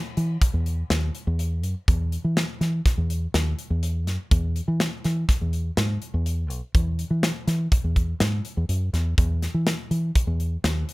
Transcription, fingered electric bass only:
0, 0, Header, 1, 2, 480
1, 0, Start_track
1, 0, Key_signature, 4, "major"
1, 0, Tempo, 487013
1, 1852, Time_signature, 5, 2, 24, 8
1, 10777, End_track
2, 0, Start_track
2, 0, Title_t, "Fingered electric bass"
2, 0, Program_c, 0, 33
2, 169, Note_on_c, 0, 52, 81
2, 357, Note_off_c, 0, 52, 0
2, 528, Note_on_c, 0, 40, 69
2, 810, Note_off_c, 0, 40, 0
2, 888, Note_on_c, 0, 39, 89
2, 1077, Note_off_c, 0, 39, 0
2, 1252, Note_on_c, 0, 40, 85
2, 1616, Note_off_c, 0, 40, 0
2, 1616, Note_on_c, 0, 42, 79
2, 1708, Note_off_c, 0, 42, 0
2, 1854, Note_on_c, 0, 40, 80
2, 2134, Note_off_c, 0, 40, 0
2, 2212, Note_on_c, 0, 52, 73
2, 2399, Note_off_c, 0, 52, 0
2, 2570, Note_on_c, 0, 52, 81
2, 2758, Note_off_c, 0, 52, 0
2, 2932, Note_on_c, 0, 40, 71
2, 3213, Note_off_c, 0, 40, 0
2, 3294, Note_on_c, 0, 39, 94
2, 3480, Note_off_c, 0, 39, 0
2, 3650, Note_on_c, 0, 40, 86
2, 4009, Note_off_c, 0, 40, 0
2, 4009, Note_on_c, 0, 42, 79
2, 4104, Note_off_c, 0, 42, 0
2, 4254, Note_on_c, 0, 40, 88
2, 4534, Note_off_c, 0, 40, 0
2, 4611, Note_on_c, 0, 52, 80
2, 4798, Note_off_c, 0, 52, 0
2, 4978, Note_on_c, 0, 52, 83
2, 5162, Note_off_c, 0, 52, 0
2, 5336, Note_on_c, 0, 40, 70
2, 5614, Note_off_c, 0, 40, 0
2, 5689, Note_on_c, 0, 44, 92
2, 5877, Note_off_c, 0, 44, 0
2, 6050, Note_on_c, 0, 40, 83
2, 6409, Note_off_c, 0, 40, 0
2, 6409, Note_on_c, 0, 35, 83
2, 6503, Note_off_c, 0, 35, 0
2, 6651, Note_on_c, 0, 40, 77
2, 6931, Note_off_c, 0, 40, 0
2, 7003, Note_on_c, 0, 52, 74
2, 7192, Note_off_c, 0, 52, 0
2, 7366, Note_on_c, 0, 52, 87
2, 7554, Note_off_c, 0, 52, 0
2, 7729, Note_on_c, 0, 40, 73
2, 8009, Note_off_c, 0, 40, 0
2, 8090, Note_on_c, 0, 44, 90
2, 8276, Note_off_c, 0, 44, 0
2, 8448, Note_on_c, 0, 40, 81
2, 8557, Note_off_c, 0, 40, 0
2, 8563, Note_on_c, 0, 42, 73
2, 8782, Note_off_c, 0, 42, 0
2, 8804, Note_on_c, 0, 40, 75
2, 9022, Note_off_c, 0, 40, 0
2, 9048, Note_on_c, 0, 40, 87
2, 9328, Note_off_c, 0, 40, 0
2, 9406, Note_on_c, 0, 52, 72
2, 9594, Note_off_c, 0, 52, 0
2, 9765, Note_on_c, 0, 52, 76
2, 9953, Note_off_c, 0, 52, 0
2, 10124, Note_on_c, 0, 40, 73
2, 10406, Note_off_c, 0, 40, 0
2, 10487, Note_on_c, 0, 39, 91
2, 10675, Note_off_c, 0, 39, 0
2, 10777, End_track
0, 0, End_of_file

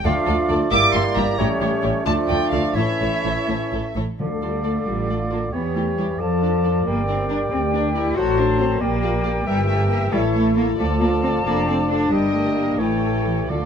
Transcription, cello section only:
0, 0, Header, 1, 2, 480
1, 0, Start_track
1, 0, Key_signature, -1, "minor"
1, 0, Tempo, 447094
1, 55, Time_signature, 6, 3, 24, 8
1, 2456, Tempo, 471328
1, 4856, Tempo, 438917
1, 12056, Tempo, 445104
1, 13496, Tempo, 467290
1, 14616, End_track
2, 0, Start_track
2, 0, Title_t, "Cello section"
2, 0, Program_c, 0, 48
2, 50, Note_on_c, 0, 38, 72
2, 136, Note_off_c, 0, 38, 0
2, 291, Note_on_c, 0, 38, 62
2, 377, Note_off_c, 0, 38, 0
2, 531, Note_on_c, 0, 38, 67
2, 616, Note_off_c, 0, 38, 0
2, 774, Note_on_c, 0, 43, 75
2, 860, Note_off_c, 0, 43, 0
2, 1011, Note_on_c, 0, 43, 72
2, 1097, Note_off_c, 0, 43, 0
2, 1251, Note_on_c, 0, 43, 73
2, 1337, Note_off_c, 0, 43, 0
2, 1494, Note_on_c, 0, 45, 63
2, 1580, Note_off_c, 0, 45, 0
2, 1725, Note_on_c, 0, 45, 57
2, 1811, Note_off_c, 0, 45, 0
2, 1963, Note_on_c, 0, 45, 61
2, 2049, Note_off_c, 0, 45, 0
2, 2208, Note_on_c, 0, 50, 64
2, 2293, Note_off_c, 0, 50, 0
2, 2452, Note_on_c, 0, 50, 62
2, 2534, Note_off_c, 0, 50, 0
2, 2693, Note_on_c, 0, 50, 62
2, 2775, Note_off_c, 0, 50, 0
2, 2941, Note_on_c, 0, 45, 57
2, 3023, Note_off_c, 0, 45, 0
2, 3184, Note_on_c, 0, 45, 51
2, 3265, Note_off_c, 0, 45, 0
2, 3429, Note_on_c, 0, 45, 58
2, 3510, Note_off_c, 0, 45, 0
2, 3667, Note_on_c, 0, 45, 53
2, 3749, Note_off_c, 0, 45, 0
2, 3913, Note_on_c, 0, 45, 54
2, 3994, Note_off_c, 0, 45, 0
2, 4158, Note_on_c, 0, 45, 61
2, 4239, Note_off_c, 0, 45, 0
2, 4394, Note_on_c, 0, 53, 50
2, 4476, Note_off_c, 0, 53, 0
2, 4625, Note_on_c, 0, 55, 45
2, 4850, Note_off_c, 0, 55, 0
2, 4853, Note_on_c, 0, 57, 52
2, 5095, Note_on_c, 0, 55, 60
2, 5099, Note_off_c, 0, 57, 0
2, 5342, Note_off_c, 0, 55, 0
2, 5343, Note_on_c, 0, 57, 53
2, 5585, Note_on_c, 0, 58, 53
2, 5588, Note_off_c, 0, 57, 0
2, 5672, Note_off_c, 0, 58, 0
2, 5827, Note_on_c, 0, 59, 55
2, 6067, Note_off_c, 0, 59, 0
2, 6070, Note_on_c, 0, 57, 50
2, 6310, Note_on_c, 0, 55, 51
2, 6315, Note_off_c, 0, 57, 0
2, 6398, Note_off_c, 0, 55, 0
2, 6557, Note_on_c, 0, 53, 54
2, 7266, Note_off_c, 0, 53, 0
2, 7279, Note_on_c, 0, 58, 65
2, 7514, Note_off_c, 0, 58, 0
2, 7515, Note_on_c, 0, 60, 56
2, 7751, Note_off_c, 0, 60, 0
2, 7756, Note_on_c, 0, 62, 65
2, 7844, Note_off_c, 0, 62, 0
2, 7999, Note_on_c, 0, 60, 67
2, 8087, Note_off_c, 0, 60, 0
2, 8234, Note_on_c, 0, 62, 62
2, 8470, Note_off_c, 0, 62, 0
2, 8479, Note_on_c, 0, 64, 73
2, 8710, Note_off_c, 0, 64, 0
2, 8714, Note_on_c, 0, 66, 82
2, 8949, Note_off_c, 0, 66, 0
2, 8953, Note_on_c, 0, 62, 71
2, 9184, Note_off_c, 0, 62, 0
2, 9184, Note_on_c, 0, 60, 72
2, 9414, Note_on_c, 0, 58, 83
2, 9415, Note_off_c, 0, 60, 0
2, 10127, Note_off_c, 0, 58, 0
2, 10128, Note_on_c, 0, 55, 81
2, 10362, Note_off_c, 0, 55, 0
2, 10369, Note_on_c, 0, 57, 68
2, 10604, Note_off_c, 0, 57, 0
2, 10608, Note_on_c, 0, 58, 71
2, 10695, Note_off_c, 0, 58, 0
2, 10849, Note_on_c, 0, 55, 91
2, 10936, Note_off_c, 0, 55, 0
2, 11089, Note_on_c, 0, 57, 70
2, 11325, Note_off_c, 0, 57, 0
2, 11331, Note_on_c, 0, 58, 72
2, 11419, Note_off_c, 0, 58, 0
2, 11570, Note_on_c, 0, 57, 77
2, 11657, Note_off_c, 0, 57, 0
2, 11809, Note_on_c, 0, 58, 66
2, 11896, Note_off_c, 0, 58, 0
2, 12051, Note_on_c, 0, 60, 71
2, 12138, Note_off_c, 0, 60, 0
2, 12291, Note_on_c, 0, 58, 78
2, 12529, Note_off_c, 0, 58, 0
2, 12533, Note_on_c, 0, 60, 69
2, 12619, Note_off_c, 0, 60, 0
2, 12776, Note_on_c, 0, 62, 72
2, 13009, Note_off_c, 0, 62, 0
2, 13012, Note_on_c, 0, 55, 71
2, 13250, Note_on_c, 0, 57, 59
2, 13252, Note_off_c, 0, 55, 0
2, 13493, Note_on_c, 0, 58, 67
2, 13494, Note_off_c, 0, 57, 0
2, 13729, Note_off_c, 0, 58, 0
2, 13729, Note_on_c, 0, 57, 59
2, 14212, Note_on_c, 0, 52, 52
2, 14213, Note_off_c, 0, 57, 0
2, 14450, Note_on_c, 0, 50, 43
2, 14454, Note_off_c, 0, 52, 0
2, 14616, Note_off_c, 0, 50, 0
2, 14616, End_track
0, 0, End_of_file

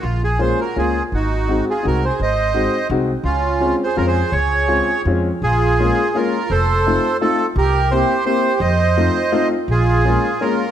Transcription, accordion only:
0, 0, Header, 1, 2, 480
1, 0, Start_track
1, 0, Key_signature, -5, "major"
1, 0, Tempo, 359281
1, 51, Time_signature, 3, 2, 24, 8
1, 7248, Key_signature, -5, "minor"
1, 8211, Tempo, 355030
1, 14383, End_track
2, 0, Start_track
2, 0, Title_t, "Accordion"
2, 0, Program_c, 0, 21
2, 569, Note_on_c, 0, 68, 62
2, 792, Note_off_c, 0, 68, 0
2, 797, Note_on_c, 0, 66, 50
2, 1006, Note_off_c, 0, 66, 0
2, 1029, Note_on_c, 0, 65, 51
2, 1370, Note_off_c, 0, 65, 0
2, 1534, Note_on_c, 0, 63, 67
2, 2207, Note_off_c, 0, 63, 0
2, 2266, Note_on_c, 0, 65, 56
2, 2462, Note_off_c, 0, 65, 0
2, 2494, Note_on_c, 0, 66, 59
2, 2713, Note_off_c, 0, 66, 0
2, 2745, Note_on_c, 0, 68, 67
2, 2937, Note_off_c, 0, 68, 0
2, 2970, Note_on_c, 0, 72, 82
2, 3841, Note_off_c, 0, 72, 0
2, 4343, Note_on_c, 0, 61, 62
2, 5026, Note_off_c, 0, 61, 0
2, 5147, Note_on_c, 0, 68, 68
2, 5295, Note_off_c, 0, 68, 0
2, 5305, Note_on_c, 0, 65, 59
2, 5423, Note_off_c, 0, 65, 0
2, 5436, Note_on_c, 0, 68, 74
2, 5758, Note_off_c, 0, 68, 0
2, 5807, Note_on_c, 0, 68, 66
2, 6716, Note_off_c, 0, 68, 0
2, 7275, Note_on_c, 0, 65, 64
2, 8173, Note_off_c, 0, 65, 0
2, 8230, Note_on_c, 0, 65, 61
2, 8670, Note_off_c, 0, 65, 0
2, 8703, Note_on_c, 0, 69, 84
2, 9597, Note_off_c, 0, 69, 0
2, 9671, Note_on_c, 0, 65, 62
2, 9997, Note_off_c, 0, 65, 0
2, 10143, Note_on_c, 0, 67, 84
2, 10575, Note_off_c, 0, 67, 0
2, 10632, Note_on_c, 0, 67, 78
2, 11056, Note_off_c, 0, 67, 0
2, 11090, Note_on_c, 0, 67, 66
2, 11524, Note_off_c, 0, 67, 0
2, 11556, Note_on_c, 0, 72, 89
2, 12726, Note_off_c, 0, 72, 0
2, 13034, Note_on_c, 0, 65, 76
2, 13934, Note_off_c, 0, 65, 0
2, 13981, Note_on_c, 0, 65, 70
2, 14383, Note_off_c, 0, 65, 0
2, 14383, End_track
0, 0, End_of_file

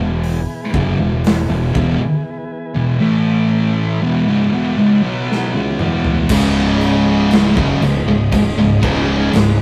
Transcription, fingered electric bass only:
0, 0, Header, 1, 3, 480
1, 0, Start_track
1, 0, Key_signature, 4, "minor"
1, 0, Tempo, 1011804
1, 1069, Time_signature, 4, 2, 24, 8
1, 4563, End_track
2, 0, Start_track
2, 0, Title_t, "Fingered electric bass"
2, 0, Program_c, 0, 33
2, 0, Note_on_c, 0, 28, 82
2, 212, Note_off_c, 0, 28, 0
2, 349, Note_on_c, 0, 30, 84
2, 460, Note_off_c, 0, 30, 0
2, 468, Note_on_c, 0, 28, 78
2, 692, Note_off_c, 0, 28, 0
2, 706, Note_on_c, 0, 28, 80
2, 819, Note_off_c, 0, 28, 0
2, 831, Note_on_c, 0, 28, 87
2, 942, Note_off_c, 0, 28, 0
2, 2989, Note_on_c, 0, 25, 100
2, 3569, Note_off_c, 0, 25, 0
2, 3591, Note_on_c, 0, 30, 92
2, 3701, Note_off_c, 0, 30, 0
2, 3706, Note_on_c, 0, 25, 80
2, 3817, Note_off_c, 0, 25, 0
2, 3825, Note_on_c, 0, 25, 86
2, 3937, Note_off_c, 0, 25, 0
2, 3947, Note_on_c, 0, 25, 83
2, 4058, Note_off_c, 0, 25, 0
2, 4069, Note_on_c, 0, 25, 81
2, 4178, Note_off_c, 0, 25, 0
2, 4189, Note_on_c, 0, 25, 96
2, 4410, Note_off_c, 0, 25, 0
2, 4428, Note_on_c, 0, 25, 86
2, 4563, Note_off_c, 0, 25, 0
2, 4563, End_track
3, 0, Start_track
3, 0, Title_t, "Muted fingered electric bass strokes"
3, 954, Note_on_c, 9, 29, 38
3, 1002, Note_off_c, 9, 29, 0
3, 4563, End_track
0, 0, End_of_file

